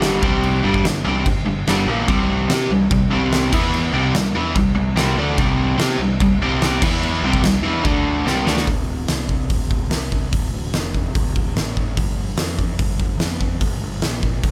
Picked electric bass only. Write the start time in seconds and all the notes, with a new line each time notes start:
Already playing: G1
0.22 C2
0.64 G1
0.84 G1
1.06 C2
1.25 G1
1.47 G1
1.67 G1
1.86 A#1
2.08 C2
2.48 C3
2.70 C2
2.90 C2
3.11 C2
3.53 E2
3.92 C2
4.14 C2
4.34 E2
4.55 C2
4.75 C2
4.95 C2
5.16 D2
5.38 C2
5.78 C3
5.99 C2
6.20 C2
6.38 C2
6.82 E2
7.22 C2
7.44 C2
7.64 E2
7.84 D2
8.25 C2
8.46 D2
8.67 D1
9.08 C2
9.50 D1
9.89 C2
10.33 D1
10.52 D1
10.73 F1
11.15 D1
11.36 D1
11.56 A1
11.97 G1
12.37 F2
12.79 G1
13.18 F2
13.60 G1
13.81 G1
14.01 A#1
14.43 G1